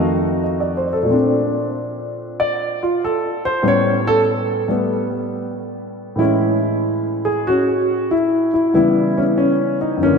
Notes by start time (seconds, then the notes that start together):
Already playing: F2 D#3 A3 F#4 D#5
0.44 D#5
0.60 D5
0.77 C5
0.93 A4
1.03 A#2 A3
1.10 C4 D4
2.40 D5
2.83 F4
3.04 A4
3.45 C5
3.62 A2 G3 B3 C#4
3.68 C#5
4.07 A4
4.68 G3 A3 B3
6.16 A2 E3 G#3 E4
6.20 C#4
7.25 G#4
7.47 C#4 F#4
8.11 E4
8.54 E4
8.73 C#3 E3 G3 B3 E4
8.78 G3
9.18 C#4
9.38 C#4
9.81 D#4
9.97 F#2 E3
10.03 E3 A#3 C#4
10.08 D3